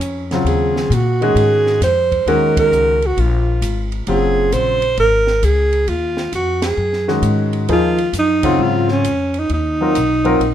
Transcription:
Already playing: C#4
0.00 F2, hi-hat pedal, ride
0.31 C#3 F#3 C4 F4, snare, ride
0.45 D#2 G#4, ride
0.76 snare
0.90 A#2, hi-hat pedal, ride
0.94 F#4
1.21 D#3 G#3 C#4 F#4 G#4, ride
1.35 G#2, ride
1.66 snare
1.81 F2 C5, snare, hi-hat pedal, ride
2.12 kick, ride
2.26 D#2 D#3 G#3 C#4 F#4 A#4, ride
2.57 A#4, kick, ride
2.72 C#2, hi-hat pedal
3.02 ride
3.07 F#4
3.17 A#1 F4, ride
3.62 G#1, hi-hat pedal, ride
3.92 ride
4.07 F#1 C#3 F#3 C4 F4 G#4, ride
4.52 A#1 C5, hi-hat pedal, ride
4.82 ride
4.97 G#1 A#4, ride
5.27 snare
5.42 C#2 G#4, hi-hat pedal, ride
5.73 ride
5.88 D#2 F4, ride
6.17 snare
6.32 F2 F#4, hi-hat pedal, ride
6.62 snare, ride
6.67 G#4
6.77 F#2
6.93 snare
7.08 D#3 G#3 C#4 F#4, snare
7.22 G#2, hi-hat pedal, ride
7.53 ride
7.68 D#2 F3 A#3 D#4 G#4, ride
7.73 F4
7.98 ride
8.13 F#2, hi-hat pedal, ride
8.19 D#4
8.43 C#3 F#3 C4 F4, kick, ride
8.59 G#2 F4
8.88 C#4, snare
9.04 F2, hi-hat pedal, ride
9.34 ride
9.39 D#4
9.49 D#2, ride
9.54 D#4
9.81 F#3 C4 F4 A#4
9.95 B1, hi-hat pedal, ride
10.24 F#3 C4 F4 A#4, ride
10.40 A#1, ride

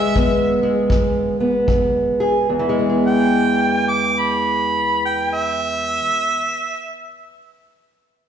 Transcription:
Already playing: E2 G#3 B3 G#4 E5
0.16 E2 B3, kick
0.63 G#3
0.90 E2, kick
1.40 B3
1.67 E2, kick
2.20 G#4
2.49 E2
2.59 E3
2.69 G#3
2.79 B3
2.90 G#4
3.07 G5
3.91 D6
4.20 B5
5.05 G5
5.34 E5

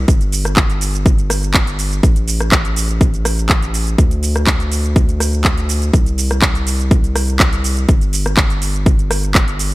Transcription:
0.08 G1, kick, closed hi-hat, shaker
0.21 closed hi-hat, shaker
0.32 open hi-hat, shaker
0.45 cross-stick, closed hi-hat, shaker
0.56 kick, clap, closed hi-hat, shaker
0.70 closed hi-hat, shaker
0.81 open hi-hat, shaker
0.94 closed hi-hat, shaker
1.06 kick, closed hi-hat, shaker
1.18 closed hi-hat, shaker
1.30 cross-stick, open hi-hat, shaker
1.43 closed hi-hat, shaker
1.54 kick, clap, closed hi-hat, shaker
1.67 closed hi-hat, shaker
1.79 open hi-hat, shaker
1.92 closed hi-hat, shaker
2.03 A1, kick, closed hi-hat, shaker
2.16 closed hi-hat, shaker
2.28 open hi-hat, shaker
2.40 cross-stick, closed hi-hat, shaker
2.52 kick, clap, closed hi-hat, shaker
2.65 closed hi-hat, shaker
2.76 open hi-hat, shaker
2.89 closed hi-hat, shaker
3.01 kick, closed hi-hat, shaker
3.14 closed hi-hat, shaker
3.25 cross-stick, open hi-hat, shaker
3.38 closed hi-hat, shaker
3.49 kick, clap, closed hi-hat, shaker
3.62 closed hi-hat, shaker
3.74 open hi-hat, shaker
3.87 closed hi-hat, shaker
3.98 D2, kick, closed hi-hat, shaker
4.11 closed hi-hat, shaker
4.23 open hi-hat, shaker
4.36 cross-stick, closed hi-hat, shaker
4.47 kick, clap, closed hi-hat, shaker
4.60 closed hi-hat, shaker
4.72 open hi-hat, shaker
4.84 closed hi-hat, shaker
4.96 kick, closed hi-hat, shaker
5.09 closed hi-hat, shaker
5.20 cross-stick, open hi-hat, shaker
5.33 closed hi-hat, shaker
5.44 kick, clap, closed hi-hat, shaker
5.58 closed hi-hat, shaker
5.69 open hi-hat, shaker
5.82 closed hi-hat, shaker
5.93 C2, kick, closed hi-hat, shaker
6.06 closed hi-hat, shaker
6.18 open hi-hat, shaker
6.31 cross-stick, closed hi-hat, shaker
6.42 kick, clap, closed hi-hat, shaker
6.55 closed hi-hat, shaker
6.67 open hi-hat, shaker
6.80 closed hi-hat, shaker
6.91 kick, closed hi-hat, shaker
7.04 closed hi-hat, shaker
7.16 cross-stick, open hi-hat, shaker
7.28 closed hi-hat, shaker
7.40 kick, clap, closed hi-hat, shaker
7.53 closed hi-hat, shaker
7.64 open hi-hat, shaker
7.77 closed hi-hat, shaker
7.88 G1, kick, closed hi-hat, shaker
8.01 closed hi-hat, shaker
8.13 open hi-hat, shaker
8.26 cross-stick, closed hi-hat, shaker
8.37 kick, clap, closed hi-hat, shaker
8.50 closed hi-hat, shaker
8.62 open hi-hat, shaker
8.75 closed hi-hat, shaker
8.86 kick, closed hi-hat, shaker
8.99 closed hi-hat, shaker
9.11 cross-stick, open hi-hat, shaker
9.23 closed hi-hat, shaker
9.35 kick, clap, closed hi-hat, shaker
9.48 closed hi-hat, shaker
9.59 open hi-hat, shaker

